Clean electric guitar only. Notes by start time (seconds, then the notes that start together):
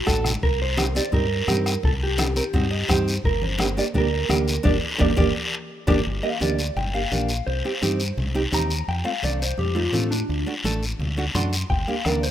Already playing: F#4
0.43 A#4
0.62 C5
0.97 D5
1.14 A#4
1.85 A4
2.03 G4
3.25 A#4
3.43 C5
3.79 D5
3.98 A#4
4.65 G4 A#4 D5
5.01 G4 A#4 D5
5.18 G4 A#4 D5
5.89 G4 A#4 D5
6.23 F5
6.42 D5
6.77 G5
6.94 F5
7.47 C5
8.54 A#5
8.89 G5
9.05 F5
9.24 D5
9.42 C5
9.59 G4
9.75 F4
9.95 D4
10.11 D4
11.35 C6
11.70 G5
11.88 F5
12.05 D5
12.23 C5